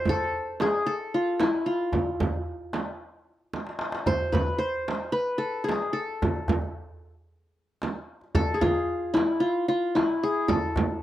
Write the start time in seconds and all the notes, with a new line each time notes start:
Already playing: C5
0.05 A4, frame drum, darbuka dum
0.20 darbuka ka
0.60 G#4, darbuka tek, frame drum
0.86 A4
1.14 F4
1.40 E4, darbuka tek, frame drum
1.54 darbuka ka
1.66 F4
1.81 darbuka ka
1.92 darbuka dum, frame drum
2.20 frame drum, darbuka dum
2.34 darbuka ka
2.46 darbuka ka
2.73 darbuka tek, frame drum
3.53 darbuka tek, frame drum
3.67 darbuka ka
3.79 darbuka tek
3.92 darbuka ka
4.06 C5, darbuka dum, frame drum
4.20 darbuka ka
4.32 B4, darbuka dum, frame drum
4.48 darbuka ka
4.58 C5
4.88 darbuka tek, frame drum
5.12 B4
5.38 A4
5.64 G#4
5.69 darbuka tek, frame drum
5.83 darbuka ka
5.93 A4
6.09 darbuka ka
6.22 darbuka dum, frame drum
6.36 darbuka ka
6.48 darbuka dum, frame drum
6.62 darbuka ka
7.82 darbuka tek, frame drum
7.96 darbuka ka
8.21 darbuka ka
8.35 A4, darbuka dum, frame drum
8.48 darbuka ka
8.54 G#4
8.61 F4, darbuka dum, frame drum
8.76 darbuka ka
9.14 E4, darbuka tek, frame drum
9.40 F4
9.68 F4
9.95 E4, darbuka tek, frame drum
10.09 darbuka ka
10.23 G#4
10.36 darbuka ka
10.48 A4, darbuka dum, frame drum
10.62 darbuka ka
10.76 darbuka dum, frame drum
10.88 darbuka ka